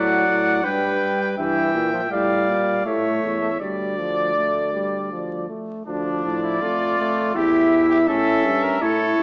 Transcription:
0.00 0.27 A2 medium
0.00 0.60 F#3 medium
0.00 0.65 D5 medium
0.00 0.66 F#5 medium
0.27 0.65 A2 medium
0.64 1.12 G2 medium
0.64 1.36 G3 medium
0.64 1.37 B4 medium
0.64 1.19 G5 loud
1.20 1.28 G5 medium
1.37 1.72 G2 medium
1.37 1.92 E3 medium
1.37 2.10 E5 medium
1.37 2.10 G5 medium
1.74 2.10 A#2 medium
1.93 2.01 F3 medium
2.11 2.49 A2 medium
2.11 2.84 G3 medium
2.11 2.84 D5 medium
2.11 2.84 F5 medium
2.48 2.85 A#2 medium
2.85 3.22 A2 medium
2.85 3.41 A3 medium
2.85 3.60 C#5 medium
2.85 3.59 E5 medium
3.23 3.60 E2 medium
3.41 3.50 A3 medium
3.60 5.45 D2 medium
3.60 3.99 G3 medium
3.60 5.45 D5 medium
3.98 4.35 F3 medium
4.36 4.73 A3 medium
4.73 5.10 G3 medium
5.12 5.48 F3 medium
5.49 5.86 A3 medium
5.86 6.26 D2 medium
5.86 6.62 F3 medium
5.86 6.38 D4 medium
5.86 7.31 D5 medium
6.25 6.61 A2 medium
6.43 6.63 E4 medium
6.61 7.34 F2 medium
6.61 6.98 A3 medium
6.61 7.37 F4 medium
6.98 7.34 A3 medium
7.35 8.10 E2 medium
7.35 8.10 E4 medium
7.35 7.89 G4 loud
7.35 8.07 E5 medium
7.90 7.98 G4 loud
8.08 8.47 A2 medium
8.08 8.81 C#4 medium
8.08 8.65 A4 loud
8.08 8.83 E5 loud
8.45 8.81 G2 medium
8.63 8.81 A#4 medium
8.81 9.18 A2 medium
8.81 9.23 E4 medium
8.81 9.23 A4 loud
8.81 9.23 C#5 medium
9.19 9.23 G2 medium

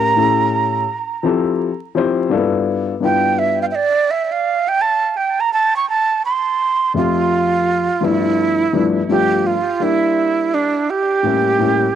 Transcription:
0.00 0.11 A2 medium
0.00 0.11 C#4 medium
0.00 0.12 E4 medium
0.00 0.12 G4 medium
0.00 0.12 A#4 medium
0.00 1.25 A#5 loud
0.16 0.83 A2 medium
0.16 0.83 C#4 medium
0.16 0.83 E4 medium
0.16 0.84 G4 medium
0.16 0.84 A4 medium
1.23 1.68 F3 medium
1.23 1.69 C4 medium
1.23 1.69 E4 medium
1.23 1.69 G4 medium
1.23 1.70 A4 medium
1.95 2.31 F3 medium
1.95 2.31 C4 medium
1.95 2.30 E4 medium
1.95 2.32 G4 medium
1.95 2.32 C5 loud
2.30 2.91 G2 medium
2.30 2.39 A#3 medium
2.30 2.92 D4 medium
2.30 2.92 E4 medium
2.30 2.93 F4 medium
2.30 2.93 A4 medium
2.37 2.95 B3 medium
3.01 3.68 G2 medium
3.01 3.68 B3 medium
3.01 3.69 D4 medium
3.01 3.69 E4 medium
3.01 3.69 F4 medium
3.01 3.69 B4 medium
3.05 3.40 G5 medium
3.39 3.61 E5 medium
3.62 3.65 F5 medium
3.71 3.77 E5 medium
3.75 4.12 D5 medium
4.11 4.25 E5 medium
4.25 4.34 E5 medium
4.32 4.70 F5 medium
4.68 4.83 G5 medium
4.82 5.18 A5 loud
5.17 5.42 G5 medium
5.40 5.53 A#5 loud
5.53 5.74 A5 loud
5.76 5.88 C#6 medium
5.89 6.22 A5 loud
6.26 6.92 C6 loud
6.94 7.85 F2 medium
6.94 7.85 A3 medium
6.94 7.85 C4 medium
6.94 8.06 F4 medium
6.94 7.86 G4 medium
6.94 7.86 E5 medium
8.01 8.63 G2 medium
8.01 8.63 F3 medium
8.01 8.63 A3 medium
8.01 8.63 B3 medium
8.01 8.64 D4 medium
8.01 8.64 E4 medium
8.05 8.88 E4 medium
8.73 8.99 G2 medium
8.73 8.99 F3 medium
8.73 8.99 A3 medium
8.73 8.99 B3 medium
8.73 9.00 D4 medium
8.73 9.00 E4 medium
9.09 9.54 G2 medium
9.09 9.54 F3 medium
9.09 9.55 A3 medium
9.09 9.55 B3 medium
9.09 9.55 D4 medium
9.09 9.55 F4 medium
9.09 9.48 G4 loud
9.47 9.84 F4 medium
9.80 10.70 G3 medium
9.80 10.71 A#3 medium
9.80 10.71 D4 medium
9.80 10.72 E4 medium
9.80 10.56 E4 loud
10.54 10.92 D4 medium
10.90 11.95 G4 medium
11.23 11.54 A2 medium
11.23 11.54 G3 medium
11.23 11.55 A#3 medium
11.23 11.55 C#4 medium
11.23 11.55 E4 medium
11.58 11.84 A2 medium
11.58 11.85 G3 medium
11.58 11.85 A#3 medium
11.58 11.86 C#4 medium
11.58 11.86 E4 medium

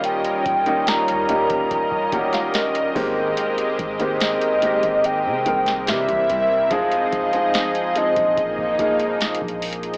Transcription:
0.00 0.42 D#1 medium
0.00 0.46 D#3 medium
0.00 0.46 G3 medium
0.00 2.92 G3 medium
0.00 0.46 A#3 medium
0.00 0.46 C#4 medium
0.00 2.92 C#4 medium
0.00 2.92 F4 medium
0.00 0.47 G4 medium
0.00 6.67 A#4 medium
0.00 5.83 D#5 medium
0.00 closed hi-hat medium
0.05 0.90 G5 loud
0.25 closed hi-hat soft
0.46 1.10 D#1 loud
0.46 kick loud
0.46 closed hi-hat medium
0.66 1.07 D#3 medium
0.66 1.08 G3 medium
0.66 1.08 A#3 medium
0.66 1.08 C#4 medium
0.66 1.08 D#4 medium
0.66 closed hi-hat soft
0.87 2.96 A#5 loud
0.87 snare loud
0.87 closed hi-hat medium
1.08 1.48 D#2 loud
1.08 closed hi-hat medium
1.29 1.84 D#3 medium
1.29 1.84 G3 medium
1.29 1.84 A#3 medium
1.29 1.84 C#4 medium
1.29 1.85 G4 medium
1.29 closed hi-hat medium
1.50 2.30 D#1 loud
1.50 kick medium
1.50 closed hi-hat medium
1.71 kick loud
1.71 closed hi-hat medium
1.91 kick loud
2.12 2.94 D#3 medium
2.12 2.94 G3 medium
2.12 2.95 A#3 medium
2.12 2.95 C#4 medium
2.12 2.20 F#4 medium
2.12 2.32 G5 medium
2.12 kick loud
2.12 closed hi-hat medium
2.21 2.96 G4 medium
2.33 2.53 F5 medium
2.33 snare medium
2.33 closed hi-hat soft
2.54 3.34 D#5 medium
2.54 snare loud
2.54 closed hi-hat medium
2.75 closed hi-hat medium
2.95 3.36 G#1 loud
2.95 3.79 D#3 loud
2.95 5.84 G#3 medium
2.95 3.79 G#3 medium
2.95 3.79 A#3 medium
2.95 8.33 C4 medium
2.95 3.80 C4 medium
2.95 5.84 G4 medium
2.95 3.80 G4 loud
2.95 kick loud
2.95 open hi-hat medium
3.37 closed hi-hat medium
3.58 closed hi-hat medium
3.79 4.79 G#1 loud
3.79 kick loud
3.79 closed hi-hat medium
3.99 4.41 D#3 medium
3.99 4.41 G#3 medium
3.99 4.41 A#3 medium
3.99 4.41 C4 medium
3.99 4.42 G4 medium
3.99 closed hi-hat soft
4.20 5.07 D#5 loud
4.20 snare loud
4.20 closed hi-hat medium
4.42 closed hi-hat medium
4.62 5.17 D#3 medium
4.62 5.17 G#3 medium
4.62 5.17 A#3 medium
4.62 5.18 C4 medium
4.62 5.18 G4 medium
4.62 closed hi-hat medium
4.83 5.27 G#1 loud
4.83 kick medium
4.83 closed hi-hat medium
5.04 5.90 G5 loud
5.04 closed hi-hat medium
5.25 5.45 C3 loud
5.45 5.89 C2 loud
5.45 5.87 D#3 medium
5.45 5.87 G#3 medium
5.45 5.87 A#3 medium
5.45 5.87 C4 medium
5.45 5.88 A#4 medium
5.45 kick loud
5.45 closed hi-hat medium
5.66 snare medium
5.66 closed hi-hat soft
5.87 6.07 C3 loud
5.87 6.54 E3 medium
5.87 6.70 G3 medium
5.87 6.54 G3 medium
5.87 6.54 A#3 medium
5.87 6.55 C4 medium
5.87 6.70 E4 medium
5.87 6.55 G4 medium
5.87 6.70 E5 medium
5.87 6.51 E5 loud
5.87 snare loud
5.87 closed hi-hat medium
6.08 6.28 C2 loud
6.08 kick loud
6.08 closed hi-hat medium
6.29 6.69 C2 loud
6.29 closed hi-hat medium
6.51 6.74 E5 loud
6.70 7.11 F1 loud
6.70 7.11 F3 loud
6.70 9.97 F3 medium
6.70 7.12 G#3 medium
6.70 7.12 C4 medium
6.70 8.36 D#4 medium
6.70 7.12 D#4 medium
6.70 9.97 G#4 medium
6.70 7.13 G#4 loud
6.70 9.97 D#5 medium
6.70 7.55 F5 loud
6.70 kick loud
6.70 closed hi-hat medium
6.91 closed hi-hat medium
7.12 7.72 F1 loud
7.12 kick loud
7.12 closed hi-hat medium
7.33 7.74 F3 medium
7.33 7.74 G#3 medium
7.33 7.74 C4 medium
7.33 7.75 D#4 medium
7.33 7.75 G#4 medium
7.33 closed hi-hat soft
7.54 7.99 F5 loud
7.54 snare loud
7.54 closed hi-hat medium
7.75 closed hi-hat medium
7.95 8.37 F3 medium
7.95 8.37 G#3 medium
7.95 8.38 C4 medium
7.95 8.38 D#4 medium
7.95 8.38 G#4 medium
7.95 9.63 D#5 medium
7.95 closed hi-hat medium
8.16 9.38 A#1 loud
8.16 kick medium
8.16 closed hi-hat medium
8.37 9.97 A#3 medium
8.37 9.97 D#4 medium
8.37 kick loud
8.37 closed hi-hat medium
8.58 kick loud
8.79 9.61 F3 medium
8.79 9.61 G#3 medium
8.79 9.61 A#3 medium
8.79 9.62 D#4 medium
8.79 9.62 G#4 medium
8.79 kick loud
8.79 closed hi-hat medium
8.99 closed hi-hat soft
9.21 snare loud
9.21 closed hi-hat medium
9.35 closed hi-hat medium
9.41 9.97 A#1 loud
9.41 kick loud
9.48 closed hi-hat medium
9.62 closed hi-hat medium
9.62 open hi-hat medium
9.73 closed hi-hat medium
9.83 closed hi-hat soft
9.94 closed hi-hat soft

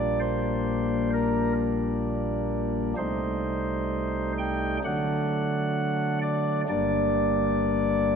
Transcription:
0.00 2.93 A#1 medium
0.00 2.94 A#2 medium
0.00 2.93 G3 soft
0.00 2.93 A#3 soft
0.00 2.93 D4 soft
0.00 0.19 D5 loud
0.20 1.10 C5 loud
1.14 1.53 A#4 loud
2.97 4.79 C2 medium
2.97 4.79 C3 medium
2.97 4.79 G3 soft
2.97 4.79 A3 medium
2.97 4.79 D#4 soft
2.97 4.32 C5 medium
4.39 4.77 G5 loud
4.84 6.64 D3 medium
4.84 6.64 F#3 medium
4.84 6.64 A3 medium
4.84 6.64 D4 medium
4.84 6.18 F#5 loud
6.22 6.61 D5 loud
6.69 8.16 G1 medium
6.69 8.16 G2 medium
6.69 8.16 G3 soft
6.69 8.16 A#3 soft
6.69 8.16 D4 soft
6.69 8.16 D5 loud

